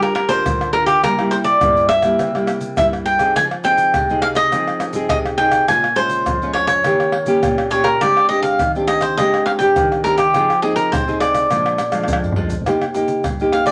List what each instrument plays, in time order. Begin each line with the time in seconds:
Already playing: nylon-string guitar G3 D4 F4 A#4
0.02 cavaquinho A#4, pandeiro, tamborim, shaker
0.15 cavaquinho A#4, pandeiro, tamborim
0.29 nylon-string guitar D4 F4 A#4, cavaquinho C5, pandeiro, shaker
0.46 nylon-string guitar D3, pandeiro, tamborim, shaker, surdo
0.61 pandeiro, tamborim, shaker
0.73 nylon-string guitar D4 F4 A#4, cavaquinho A#4, pandeiro
0.86 cavaquinho G4, pandeiro, tamborim, shaker
1.03 nylon-string guitar C3 G3 A#3 E4, cavaquinho A#4, pandeiro, tamborim, shaker, surdo
1.19 nylon-string guitar G3 A#3 E4, pandeiro, tamborim, shaker
1.31 cavaquinho C5, pandeiro, shaker
1.44 cavaquinho D5, pandeiro, shaker
1.61 nylon-string guitar G2 G3 A#3 E4, pandeiro, tamborim, shaker, surdo
1.77 pandeiro, shaker
1.89 cavaquinho E5, pandeiro, tamborim, shaker
2.02 nylon-string guitar G3 A#3 E4, pandeiro, tamborim, shaker
2.19 nylon-string guitar C3, pandeiro, tamborim, shaker, surdo
2.35 nylon-string guitar G3 A#3 E4, pandeiro, tamborim, shaker
2.47 pandeiro, tamborim, shaker
2.61 pandeiro, shaker
2.77 nylon-string guitar G2 G3 A#3 E4, cavaquinho E5, pandeiro, tamborim, shaker, surdo
2.93 pandeiro, tamborim, shaker
3.06 cavaquinho G5, pandeiro
3.19 nylon-string guitar C4 D#4 G#4, pandeiro, tamborim, shaker
3.36 nylon-string guitar F3, cavaquinho G#5, pandeiro, tamborim, shaker, surdo
3.51 pandeiro, tamborim, shaker
3.64 nylon-string guitar C4 D#4 G#4, cavaquinho G5, pandeiro, shaker
3.78 pandeiro, shaker
3.94 nylon-string guitar C3, pandeiro, tamborim, shaker, surdo
4.09 nylon-string guitar C4 D#4 G#4, pandeiro, shaker
4.22 cavaquinho F5, pandeiro, tamborim
4.35 cavaquinho D#5, pandeiro, tamborim, shaker
4.52 nylon-string guitar F3 C4 D#4 G#4, pandeiro, tamborim, shaker, surdo
4.68 pandeiro, tamborim, shaker
4.80 pandeiro, tamborim, shaker
4.93 nylon-string guitar C4 D#4 G#4, pandeiro, shaker
5.09 nylon-string guitar C3, cavaquinho D#5, pandeiro, tamborim, shaker, surdo
5.26 pandeiro, tamborim, shaker
5.38 nylon-string guitar C4 D#4 G#4, cavaquinho G5, pandeiro
5.51 pandeiro, tamborim, shaker
5.68 nylon-string guitar A#2 G#3 C#4 F4, cavaquinho G#5, pandeiro, tamborim, shaker, surdo
5.84 pandeiro, tamborim, shaker
5.96 nylon-string guitar G#3 C#4 F4, cavaquinho C5, pandeiro, shaker
6.09 pandeiro, shaker
6.26 nylon-string guitar F2, pandeiro, tamborim, shaker, surdo
6.42 nylon-string guitar G#3 C#4 F4, pandeiro, shaker
6.53 cavaquinho C#5, pandeiro, tamborim
6.67 cavaquinho C#5, pandeiro, tamborim, shaker
6.84 nylon-string guitar D#3 A#3 C#4 G4, pandeiro, tamborim, shaker, surdo
7.00 pandeiro, tamborim, shaker
7.12 pandeiro, tamborim
7.26 nylon-string guitar A#3 C#4 G4, pandeiro, shaker
7.43 nylon-string guitar A#2, pandeiro, tamborim, shaker, surdo
7.58 pandeiro, tamborim, shaker
7.71 nylon-string guitar A#3 C#4 G4, cavaquinho C#5, pandeiro, shaker
7.84 cavaquinho A#4, pandeiro, tamborim, shaker
8.01 nylon-string guitar G#3 C4 D4 G4, cavaquinho D5, pandeiro, tamborim, shaker, surdo
8.17 pandeiro, tamborim, shaker
8.29 nylon-string guitar C4 D4 G4, cavaquinho D#5, pandeiro
8.43 cavaquinho F5, pandeiro, shaker
8.59 nylon-string guitar D#3, pandeiro, tamborim, shaker, surdo
8.75 nylon-string guitar C4 D4 G4, pandeiro, shaker
8.87 cavaquinho D#5, pandeiro, tamborim, shaker
9.01 cavaquinho C5, pandeiro, tamborim, shaker
9.17 nylon-string guitar G#3 C4 D4 G4, cavaquinho D#5, pandeiro, tamborim, shaker, surdo
9.34 pandeiro, tamborim, shaker
9.46 cavaquinho F5, pandeiro, tamborim
9.59 nylon-string guitar C4 D4 G4, cavaquinho G5, pandeiro, shaker
9.76 nylon-string guitar D#3, pandeiro, tamborim, shaker, surdo
9.92 pandeiro, tamborim, shaker
10.04 nylon-string guitar C4 D4 G4, cavaquinho A#4, pandeiro, shaker
10.18 cavaquinho G4, pandeiro, tamborim, shaker
10.34 nylon-string guitar F3 C4 D#4 G#4, pandeiro, tamborim, shaker, surdo
10.50 pandeiro, tamborim, shaker
10.62 nylon-string guitar C4 D#4 G#4, cavaquinho G#4, pandeiro
10.76 cavaquinho A#4, pandeiro, shaker
10.92 nylon-string guitar C3, cavaquinho C5, pandeiro, tamborim, shaker, surdo
11.08 nylon-string guitar C4 D#4 G#4, pandeiro, shaker
11.20 cavaquinho D5, pandeiro, tamborim, shaker
11.34 pandeiro, tamborim, shaker
11.50 nylon-string guitar A#2 F3 G#3 D4, pandeiro, tamborim, shaker, surdo
11.66 pandeiro, tamborim, shaker
11.78 pandeiro, tamborim, shaker
11.92 nylon-string guitar F3 G#3 D4, pandeiro, tamborim, shaker
12.04 tamborim
12.08 nylon-string guitar F2, pandeiro, shaker, surdo
12.13 tamborim
12.24 surdo, pandeiro, shaker
12.32 surdo, pandeiro
12.37 nylon-string guitar F3 G#3 D4
12.42 surdo
12.50 pandeiro, shaker, surdo
12.62 surdo
12.66 nylon-string guitar C3 A#3 D#4 G4, pandeiro, tamborim, shaker, surdo
12.82 pandeiro, tamborim, shaker
12.95 nylon-string guitar A#3 D#4 G4, pandeiro, shaker
13.08 pandeiro, shaker
13.24 nylon-string guitar G2, pandeiro, tamborim, shaker, surdo
13.40 nylon-string guitar A#3 D#4 G4, pandeiro, shaker
13.52 cavaquinho F5, pandeiro, tamborim
13.66 cavaquinho D5, pandeiro, tamborim, shaker